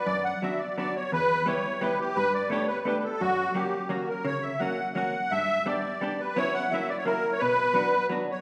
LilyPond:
<<
  \new Staff \with { instrumentName = "Accordion" } { \time 3/4 \key b \minor \tempo 4 = 171 d''8 fis''8 e''8 d''8 d''8 cis''8 | b'4 cis''4 b'8 g'8 | b'8 d''8 cis''8 b'8 b'16. b'32 a'8 | fis'4 g'4 fis'8 ais'8 |
cis''8 e''8 fis''4 fis''4 | e''4 d''4. b'8 | cis''8 fis''8 e''8 d''16 cis''16 ais'8. cis''16 | b'2 r8 cis''8 | }
  \new Staff \with { instrumentName = "Hollow-body jazz guitar" } { \time 3/4 \key b \minor fis,4 <fis b d' fis'>8 r8 <fis b d' fis'>8 r8 | e,4 <g b e' g'>8 r8 <g b e' g'>8 r8 | g,4 <a b d' g'>8 r8 <a b d' g'>8 r8 | fis,4 <fis ais cis' fis'>8 r8 <fis ais cis' fis'>8 r8 |
cis4 <fis ais cis' fis'>8 r8 <fis ais cis' fis'>8 r8 | g,4 <g b d' g'>8 r8 <g b d' g'>8 r8 | <fis b cis' e'>4 <fis ais cis' e'>8 r8 <fis ais cis' e'>8 r8 | b,4 <fis b d' fis'>8 r8 <fis b d' fis'>8 r8 | }
>>